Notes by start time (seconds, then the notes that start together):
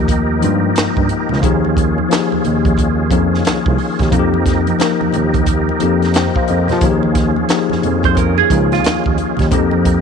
Already playing: D#2 F3 A3 A#3 D#4 F4 G4 A#4
0.08 kick, closed hi-hat
0.40 G2 F3 G#3 D#4 F4, closed hi-hat, high conga
0.48 A#3
0.76 G2, snare, clap, closed hi-hat
0.96 G2, kick, muted conga
1.09 closed hi-hat
1.29 C#2, snare, low conga
1.42 D#2 D#3 F3 A#3 C#4 D#4 F4 G#4, kick, closed hi-hat, low conga
1.65 high conga
1.77 kick, closed hi-hat
1.98 high conga
2.09 F3 A#3 D#4 G4, snare, closed hi-hat
2.13 clap
2.18 G#4
2.32 D#2, muted conga, high conga
2.44 D#2, closed hi-hat, low conga
2.65 kick, closed hi-hat, high conga
2.77 kick, closed hi-hat, muted conga
3.11 F2 F3 A#3 D#4 G#4, kick, closed hi-hat, high conga
3.34 snare
3.44 C2, snare, clap, closed hi-hat, muted conga
3.66 C2, kick, muted conga
3.78 open hi-hat
3.99 D#2, kick, snare, closed hi-hat, low conga
4.10 F2 F3 A#3 D#4 F4 G4 A#4, kick, closed hi-hat, low conga
4.19 G4
4.34 muted conga, high conga
4.46 kick, snare, closed hi-hat
4.67 closed hi-hat, high conga
4.79 F3 A#3 D#4 A#4, snare, clap, closed hi-hat, muted conga
5.01 D#2, muted conga, high conga
5.13 D#2, closed hi-hat, low conga
5.34 kick, closed hi-hat, high conga
5.46 kick, closed hi-hat, muted conga
5.69 muted conga
5.79 F2 F3 A#3 D#4 G4, closed hi-hat, high conga
6.02 snare, closed hi-hat
6.14 C5 G5, snare, clap, closed hi-hat, muted conga
6.35 C5 F5, kick, muted conga
6.48 F2 A#4 D#5, closed hi-hat
6.68 G4 C5, snare, closed hi-hat, low conga
6.72 F3
6.81 D#2 D#3 F3 A#3 C#4 D#4 F4 G4 G#4, kick, closed hi-hat, low conga
6.91 G#4
7.03 muted conga, high conga
7.15 kick, snare, closed hi-hat
7.36 high conga
7.49 F3 A#3 D#4 G4, snare, clap, closed hi-hat, muted conga
7.58 G#4
7.70 F2, snare, muted conga, high conga
7.82 F2, closed hi-hat, low conga
8.03 C5, kick, closed hi-hat, high conga
8.15 A#4, kick, closed hi-hat, muted conga
8.38 G#4, muted conga
8.50 C#2 F3 A#3 D#4 F4, kick, closed hi-hat, high conga
8.72 F4, snare, closed hi-hat
8.84 D#2, snare, clap, closed hi-hat
9.04 D#2, kick, muted conga
9.18 closed hi-hat
9.37 D#2, kick, snare, closed hi-hat, low conga
9.51 F2 F3 G#3 D#4 G4 A#4, kick, closed hi-hat, muted conga, low conga
9.58 A#3
9.71 high conga
9.85 kick, closed hi-hat